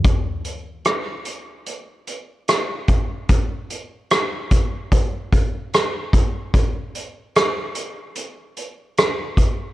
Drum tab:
HH |xxxxxxxx|xxxxxxxx|xxxxxxxx|
SD |--r---r-|--r---r-|--r---r-|
BD |o------o|o--ooo-o|o------o|